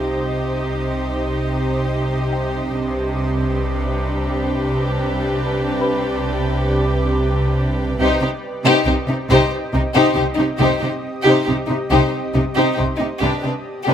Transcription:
0.00 2.74 C2 soft
0.00 2.74 C3 medium
0.00 2.73 D#4 soft
0.00 2.31 F4 soft
0.00 2.74 G4 soft
0.00 2.75 G4 medium
0.00 2.74 C5 soft
0.00 2.75 C5 medium
0.00 2.75 D#5 medium
0.00 2.31 F5 soft
2.33 4.90 G5 soft
2.77 7.95 C2 soft
2.77 7.95 C3 soft
2.77 7.95 D4 medium
2.77 7.95 G4 medium
2.77 7.97 G4 medium
2.77 7.96 B4 soft
2.77 8.00 B4 soft
2.77 8.00 D5 soft
5.81 8.39 B4 soft
5.81 8.38 B5 soft
7.99 8.08 C2 medium
7.99 8.07 C3 medium
7.99 13.21 C4 medium
7.99 8.20 D#4 medium
7.99 8.19 G4 medium
7.99 13.17 G4 medium
7.99 8.20 C5 medium
7.99 13.21 D#5 medium
8.21 8.29 C3 soft
8.21 8.29 D#4 soft
8.21 8.30 G4 soft
8.21 8.30 C5 soft
8.65 8.73 C3 medium
8.65 8.85 D#4 medium
8.65 8.85 G4 medium
8.65 8.85 C5 medium
8.86 8.94 C2 soft
8.86 8.95 C3 soft
8.86 8.96 D#4 soft
8.86 8.95 G4 soft
8.86 8.94 C5 medium
9.08 9.16 C3 soft
9.08 9.17 D#4 soft
9.08 9.16 G4 soft
9.30 9.38 C2 medium
9.30 9.38 C3 medium
9.30 9.50 D#4 medium
9.30 9.51 G4 medium
9.30 9.50 C5 medium
9.73 9.82 C2 soft
9.73 9.81 C3 medium
9.73 9.81 D#4 soft
9.73 9.82 D#4 medium
9.73 9.82 G4 soft
9.94 10.02 C3 medium
9.94 10.15 D#4 medium
9.94 10.14 G4 medium
9.94 10.15 C5 medium
10.15 10.25 C2 soft
10.15 10.24 C3 soft
10.15 10.24 D#4 medium
10.15 10.23 G4 soft
10.15 10.26 C5 medium
10.36 10.46 C3 medium
10.36 10.44 D#4 medium
10.36 10.46 D#4 medium
10.36 10.47 G4 medium
10.57 10.69 C2 medium
10.57 10.68 C3 medium
10.57 10.79 D#4 medium
10.57 10.79 G4 medium
10.63 10.82 C5 medium
10.80 10.90 C3 soft
10.80 10.88 D#4 soft
10.80 10.88 G4 soft
10.80 10.92 C5 soft
11.22 11.46 D#4 medium
11.22 11.44 G4 medium
11.27 11.35 C3 medium
11.27 11.47 C5 medium
11.45 11.56 C2 soft
11.45 11.56 C3 soft
11.45 11.56 D#4 medium
11.45 11.53 G4 soft
11.45 11.56 C5 soft
11.67 11.77 C3 soft
11.67 11.75 D#4 soft
11.67 11.78 D#4 soft
11.67 11.78 G4 soft
11.90 11.99 C2 medium
11.90 11.99 C3 medium
11.90 12.11 D#4 medium
11.90 12.11 G4 medium
11.90 12.12 C5 medium
12.34 12.43 C2 soft
12.34 12.43 C3 medium
12.34 12.42 D#4 soft
12.34 12.43 G4 soft
12.55 12.65 C3 medium
12.55 12.76 D#4 medium
12.55 12.73 G4 medium
12.55 12.76 C5 medium
12.74 12.85 D#4 soft
12.74 12.82 G4 soft
12.74 12.85 C5 soft
12.78 12.86 C2 soft
12.78 12.87 C3 soft
12.78 13.94 C6 soft
12.97 13.08 C3 soft
12.97 13.05 D#4 medium
12.97 13.07 D#4 soft
12.97 13.08 G4 soft
13.18 13.29 C2 medium
13.18 13.94 B3 medium
13.18 13.41 D4 medium
13.18 13.40 G4 medium
13.18 13.94 D5 soft
13.22 13.31 C3 medium
13.22 13.94 G4 medium
13.22 13.42 B4 soft
13.42 13.52 C3 soft
13.42 13.51 D4 soft
13.42 13.50 G4 soft
13.42 13.53 B4 soft
13.83 13.94 D4 medium
13.83 13.94 G4 soft
13.88 13.94 C3 medium
13.88 13.94 B4 medium

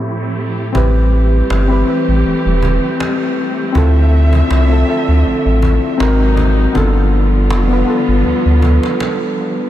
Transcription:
0.00 0.69 A2 medium
0.00 0.72 A2 medium
0.00 0.71 F3 medium
0.00 0.72 A3 medium
0.00 0.70 C4 medium
0.00 0.72 C4 medium
0.00 0.71 E4 medium
0.00 0.72 E4 medium
0.00 0.71 G4 medium
0.00 0.72 G4 medium
0.00 0.73 A4 medium
0.72 1.42 A1 loud
0.72 3.72 E3 medium
0.72 3.72 G3 medium
0.72 5.96 A3 medium
0.72 1.47 C4 medium
0.72 5.96 C4 medium
0.72 1.48 E4 medium
0.72 3.72 G4 medium
0.72 1.49 G4 medium
0.72 cajon bass loud
0.77 1.50 B4 medium
1.50 1.83 G1 medium
1.50 cajon slap loud
1.68 1.83 C4 medium
1.68 1.83 E4 medium
1.68 1.84 G4 medium
1.73 1.85 B4 medium
1.85 3.04 C4 medium
1.85 3.05 E4 medium
1.85 3.06 G4 medium
1.90 3.06 B4 medium
2.08 2.23 A1 medium
2.25 2.33 E1 soft
2.25 cajon slap soft
2.45 2.79 E1 loud
2.62 cajon bass loud
3.00 cajon slap loud
3.38 cajon slap soft
3.72 4.42 D2 loud
3.72 5.98 D3 medium
3.72 5.98 F3 medium
3.72 4.47 C4 medium
3.72 4.48 E4 medium
3.72 4.49 F4 medium
3.72 5.98 E5 medium
3.72 cajon bass loud
3.77 4.50 A4 medium
4.33 cajon bass medium
4.50 4.84 C2 medium
4.50 cajon slap loud
4.68 4.83 C4 medium
4.68 4.83 E4 medium
4.68 4.84 F4 medium
4.73 4.85 A4 medium
4.85 5.96 C4 medium
4.85 6.00 E4 medium
4.85 6.00 F4 medium
4.90 6.01 A4 medium
5.08 5.23 D2 medium
5.25 5.33 A1 soft
5.25 cajon slap soft
5.45 5.79 A1 medium
5.62 cajon bass medium
5.98 6.67 G#1 medium
5.98 6.74 C3 medium
5.98 6.74 F#3 medium
5.98 6.74 G#3 medium
5.98 6.74 A#3 medium
5.98 6.60 C4 medium
5.98 6.61 D#4 medium
5.98 6.74 D#4 medium
5.98 6.62 F#4 medium
5.98 cajon slap loud
6.02 6.62 A#4 loud
6.37 cajon bass loud
6.73 7.52 G1 loud
6.73 9.70 D3 medium
6.73 9.70 F3 medium
6.73 9.70 G3 medium
6.73 7.47 B3 medium
6.73 9.70 B3 medium
6.73 7.48 D4 medium
6.73 9.70 F4 medium
6.73 7.49 F4 medium
6.73 cajon bass loud
6.77 7.50 A4 medium
7.50 7.84 F1 medium
7.50 cajon slap loud
7.68 7.82 B3 medium
7.68 7.83 D4 medium
7.68 7.84 F4 medium
7.73 7.85 B4 medium
7.85 9.04 B3 medium
7.85 9.05 D4 medium
7.85 9.06 F4 medium
7.90 9.06 A4 medium
8.08 8.23 G1 medium
8.25 8.33 D2 soft
8.25 cajon slap soft
8.45 8.79 D2 medium
8.62 cajon bass loud
8.83 cajon slap medium
9.00 cajon slap loud
9.38 cajon slap soft

